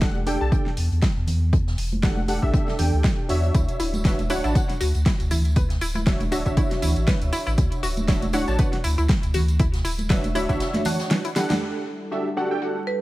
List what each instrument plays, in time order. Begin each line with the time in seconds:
Already playing: sub bass E1
0.01 synth keys D4 G4 A4 F#5, kick, snare, closed hi-hat
0.15 high conga
0.26 synth keys D4 G4 A4 G5, closed hi-hat, open hi-hat
0.41 sub bass B1, synth keys D4 G4 A4 A5
0.52 synth keys D4 G4 A4 G5, kick, closed hi-hat
0.66 snare
0.77 sub bass E2, closed hi-hat, open hi-hat
0.91 sub bass E2, closed hi-hat
1.02 kick, snare, closed hi-hat
1.17 sub bass E2
1.27 closed hi-hat, open hi-hat, low conga
1.53 kick, closed hi-hat
1.67 snare
1.78 sub bass E1, open hi-hat
1.92 closed hi-hat, high conga
2.03 synth keys D4 G4 A4 F#5, kick, snare, closed hi-hat
2.17 high conga
2.28 synth keys D4 G4 A4 F#5, closed hi-hat, open hi-hat
2.42 sub bass B1, synth keys D4 G4 A4 E5, kick
2.54 kick, closed hi-hat
2.68 snare
2.79 sub bass E2, synth keys D4 G4 A4 G5, closed hi-hat, open hi-hat, low conga
2.93 sub bass D2
3.04 kick, snare, closed hi-hat
3.29 sub bass E2, synth keys D4 F#4 C#5 E5, closed hi-hat, open hi-hat
3.43 closed hi-hat
3.54 sub bass D2, synth arpeggio sound E4, kick, closed hi-hat, tambourine
3.68 closed hi-hat, tambourine
3.80 sub bass D1, synth arpeggio sound E4, closed hi-hat, open hi-hat, tambourine
3.93 closed hi-hat, tambourine, high conga
4.05 synth keys D4 F#4 C#5 E5, synth arpeggio sound B4, kick, snare, closed hi-hat, tambourine
4.19 closed hi-hat, tambourine, high conga
4.30 synth keys D4 F#4 C#5 F#5, synth arpeggio sound E4, closed hi-hat, open hi-hat, tambourine
4.44 sub bass A1, synth keys D4 F#4 C#5 A5, synth arpeggio sound E4, closed hi-hat, tambourine
4.55 synth keys D4 F#4 C#5 F#5, kick, closed hi-hat, tambourine
4.69 snare, closed hi-hat, tambourine
4.80 sub bass D2, synth arpeggio sound F#4, closed hi-hat, open hi-hat, tambourine
4.95 sub bass D2, closed hi-hat, tambourine
5.05 synth arpeggio sound E4, kick, snare, closed hi-hat, tambourine
5.20 sub bass D2, closed hi-hat, tambourine
5.31 synth arpeggio sound E4, closed hi-hat, open hi-hat, tambourine, low conga
5.45 closed hi-hat, tambourine
5.56 synth arpeggio sound B4, kick, closed hi-hat, tambourine
5.70 snare, closed hi-hat, tambourine
5.81 sub bass D1, synth arpeggio sound E4, open hi-hat, tambourine
5.95 synth arpeggio sound E4, closed hi-hat, tambourine, high conga
6.06 synth keys D4 F#4 C#5 E5, kick, snare, closed hi-hat, tambourine
6.20 closed hi-hat, tambourine, high conga
6.31 synth keys D4 F#4 C#5 E5, synth arpeggio sound F#4, closed hi-hat, open hi-hat, tambourine
6.45 sub bass A1, synth keys D4 F#4 C#5 E5, kick, closed hi-hat, tambourine
6.56 synth arpeggio sound E4, kick, closed hi-hat, tambourine
6.71 snare, closed hi-hat, tambourine
6.82 sub bass D2, synth arpeggio sound E4, closed hi-hat, open hi-hat, tambourine, low conga
6.96 sub bass A1, closed hi-hat, tambourine
7.07 synth arpeggio sound B4, kick, snare, closed hi-hat, tambourine
7.21 sub bass D2, closed hi-hat, tambourine
7.33 synth arpeggio sound E4, closed hi-hat, open hi-hat, tambourine
7.47 sub bass A1, synth arpeggio sound E4, closed hi-hat, tambourine
7.58 sub bass D2, kick, closed hi-hat, tambourine
7.72 closed hi-hat, tambourine
7.83 sub bass D1, synth arpeggio sound F#4, closed hi-hat, open hi-hat, tambourine
7.97 closed hi-hat, tambourine, high conga
8.08 synth keys D4 F#4 C#5 E5, synth arpeggio sound E4, kick, snare, closed hi-hat, tambourine
8.22 closed hi-hat, tambourine, high conga
8.33 synth keys D4 F#4 C#5 F#5, synth arpeggio sound E4, closed hi-hat, open hi-hat, tambourine
8.47 sub bass A1, synth keys D4 F#4 C#5 A5, closed hi-hat, tambourine
8.58 synth keys D4 F#4 C#5 F#5, synth arpeggio sound B4, kick, closed hi-hat, tambourine
8.73 snare, closed hi-hat, tambourine
8.84 sub bass D2, synth arpeggio sound E4, closed hi-hat, open hi-hat, tambourine
8.98 sub bass D2, synth arpeggio sound E4, closed hi-hat, tambourine
9.08 kick, snare, closed hi-hat, tambourine
9.23 sub bass D2, closed hi-hat, tambourine
9.34 synth arpeggio sound F#4, closed hi-hat, open hi-hat, tambourine, low conga
9.48 closed hi-hat, tambourine
9.59 synth arpeggio sound E4, kick, closed hi-hat, tambourine
9.73 snare, closed hi-hat, tambourine
9.85 sub bass D1, synth arpeggio sound E4, open hi-hat, tambourine
9.98 closed hi-hat, tambourine, high conga
10.09 synth keys D4 F#4 C#5 E5, synth arpeggio sound B4, kick, snare, closed hi-hat, tambourine
10.24 closed hi-hat, tambourine, high conga
10.35 synth keys D4 F#4 C#5 E5, synth arpeggio sound E4, closed hi-hat, open hi-hat, tambourine
10.49 sub bass A1, synth keys D4 F#4 C#5 E5, synth arpeggio sound E4, kick, closed hi-hat, tambourine
10.60 snare, closed hi-hat, tambourine
10.74 snare, closed hi-hat, tambourine, high conga
10.85 synth keys D4 F#4 C#5 F#5, synth arpeggio sound D4, closed hi-hat, open hi-hat, tambourine, low conga
11.00 snare, closed hi-hat, tambourine
11.10 synth arpeggio sound E3, snare, closed hi-hat, tambourine
11.24 synth arpeggio sound E4, closed hi-hat, tambourine
11.36 synth keys D4 G4 A4 F#5, synth arpeggio sound E4, snare, closed hi-hat, open hi-hat, tambourine
11.50 synth arpeggio sound D4, snare, closed hi-hat, tambourine, high conga
11.61 analog synth pad G3 D4 E4 A4 F#5, closed hi-hat
11.86 closed hi-hat
12.11 synth keys D4 F#4 G4 A4 E5, closed hi-hat
12.37 synth keys D4 F#4 G4 A4 F#5, closed hi-hat
12.51 synth keys D4 F#4 G4 A4 G5
12.61 synth keys D4 F#4 G4 A4 F#5, closed hi-hat
12.87 marimba B4, closed hi-hat